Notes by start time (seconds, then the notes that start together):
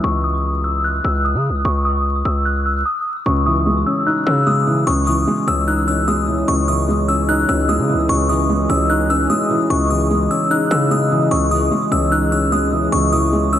Already playing: C#3 E3 G#3 C#4 D#4
0.04 C#2 C#6
0.24 D#6
0.64 E6
0.84 F#6
1.05 C#2 E6
1.25 D#6
1.35 C#3
1.50 C#2
1.65 C#2 C#6
1.85 D#6
2.25 C#2 E6
2.45 F#6
2.66 E6
2.86 D#6
3.26 C#2 C#3 C#6
3.46 E3 D#6
3.66 G#3
3.86 C#4 E6
4.06 D#4 F#6
4.27 C#3 C#4 E6
4.47 G#3 D#6
4.67 E3
4.87 C#2 C#3 E3 C#4 G#4 D#5 C#6
5.07 E3 D#6
5.27 G#3
5.47 C#2 C#4 E6
5.68 D#4 F#6
5.88 C#4 E6
6.08 G#3 D#6
6.28 E3
6.48 C#2 C#3 C#6
6.68 E3 D#6
6.88 G#3
7.08 C#4 E6
7.29 D#4 F#6
7.49 C#2 C#4 E6
7.69 G#3 D#6
7.79 C#3
7.89 E3
7.94 C#2
8.09 C#2 C#3 C#4 C#6
8.29 E3 D#6
8.49 G#3
8.70 C#2 C#4 E6
8.90 D#4 F#6
9.10 C#4 E6
9.30 G#3 D#6
9.50 E3
9.70 C#2 C#3 C#6
9.90 E3 D#6
10.11 G#3
10.31 C#4 E6
10.51 D#4 F#6
10.71 C#3 C#4 E6
10.91 G#3 D#6
11.11 E3
11.31 C#2 C#3 C#6
11.51 E3 D#6
11.72 G#3
11.92 C#2 C#4 E6
12.12 D#4 F#6
12.32 C#4 E6
12.52 G#3 D#6
12.72 E3
12.92 C#2 C#3 C#6
13.12 E3 D#6
13.33 G#3
13.53 C#4 E6